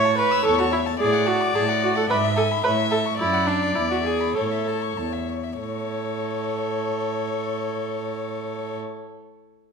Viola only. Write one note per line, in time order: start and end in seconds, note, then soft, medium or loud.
0.00 0.18 C#5 medium
0.18 0.45 B4 medium
0.45 0.59 A4 medium
0.59 0.65 F#4 medium
0.72 0.80 E4 medium
1.00 1.29 G#4 medium
1.27 1.54 F#4 medium
1.55 1.63 G#4 medium
1.83 1.96 F#4 medium
1.97 2.02 A4 medium
2.10 2.18 B4 medium
2.36 2.44 A4 medium
2.64 2.72 B4 medium
2.91 2.99 A4 medium
3.19 3.48 E4 medium
3.47 3.77 D4 medium
3.75 3.90 E4 medium
3.91 3.97 F#4 soft
4.04 4.36 G#4 medium
4.35 4.96 A4 soft
5.58 8.77 A4 soft